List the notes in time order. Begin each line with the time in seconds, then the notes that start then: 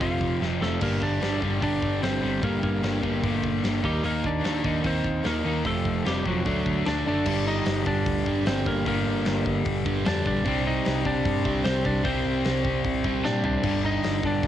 0.01 F1 F2 C3 F3 F4 F5, kick, open hi-hat
0.21 F1, kick
0.41 F1 F2 C3 F3, snare
0.50 D#5
0.61 F1 F2 C3 F3 A3 A4, snare
0.81 G1 G2 D3 G3 A#3 A#4, kick, open hi-hat, crash
1.02 G1 D4 D5, kick
1.21 G1 G2 D3 G3, snare, open hi-hat
1.42 G1 G2 D3 G3, kick
1.62 G1 G2 D3 G3 D4 D5, kick, open hi-hat
1.82 G1, kick
2.03 G1 G2 D3 G3 C4 C5, snare, open hi-hat
2.22 G1 G2 D3 G3
2.42 G1 G2 D3 G3 A#3 A#4, kick, open hi-hat
2.63 G1 A#3 A#4, kick
2.83 G1 G2 D3 G3, snare, open hi-hat
3.03 G1 G2 D3 G3, kick
3.23 G1 G2 D3 G3, kick, open hi-hat
3.44 G1, kick
3.64 G1 G2 D3 G3, snare, open hi-hat
3.83 D#2 D#3 G3 A#3 D#4 G4, kick
4.03 D#2 D#3 A#3 D#4 A#4, open hi-hat
4.24 D#2 D4 D5, kick
4.44 D#2 D#3 A#3 D#4, snare, open hi-hat
4.64 D#2 D#3 A#3 D#4, kick
4.84 D#2 D#3 A#3 C4 D#4 C5, kick, open hi-hat
5.04 D#2, kick
5.24 D#2 D#3 A#3 D#4 A#4, snare, open hi-hat
5.45 D#2 D#3 A#3 D#4
5.65 F1 F2 C3 F3 A3 A4, kick, open hi-hat
5.85 F1, kick
6.06 F1 F2 C3 F3 G3 G4, snare, open hi-hat
6.26 F1 F2 C3 F3 F#3 F#4, kick
6.45 D2 D3 A3 D4, kick, open hi-hat
6.66 D2, kick
6.86 D2 D3 A3 D4 D5, snare, open hi-hat
7.06 F#1 D3 A3 D4 D5
7.26 G1 G2 D3 G3, kick, crash
7.47 D#4 D#5
7.66 G1, snare, open hi-hat
7.86 G1 D4 D5, kick
8.06 D2, kick, open hi-hat
8.26 G1 G2 D3 G3, kick
8.46 G1 G2 D3 G3 C4 C5, snare, open hi-hat
8.66 G1 A#3 A#4, kick
8.85 G1 G2 D3 G3 A#3 A#4, kick, open hi-hat
9.25 G1, snare, open hi-hat
9.46 kick
9.65 G1, kick, open hi-hat
9.85 G1 G2 D3 G3, kick
10.05 F2 G2 D3 G3 D4 D5, snare, open hi-hat
10.26 A#1 D4 D5, kick
10.45 C2 C3 G3 C4, kick, open hi-hat
10.67 D#4 D#5
10.85 C2, snare, open hi-hat
11.05 C2 D4 D5, kick
11.25 G2, kick, open hi-hat
11.44 C2 C3 G3 C4, kick
11.64 C2 C3 G3 C4 C5, snare, open hi-hat
11.85 C2 D4 D5, kick
12.04 C2 C3 G3 C4 C5, kick, open hi-hat
12.25 C2
12.44 C2, snare, open hi-hat
12.65 kick
12.84 C2, kick, open hi-hat
13.04 C2 C3 G3 C4, kick
13.24 A#2 C3 G3 C4 D4 D5, snare
13.44 C2 D4 D5, floor tom
13.63 G1 G2 D3 G3, kick, crash
13.85 D#4 D#5
14.04 G1, snare, open hi-hat
14.23 G1 D4 D5, kick
14.43 D2, kick, open hi-hat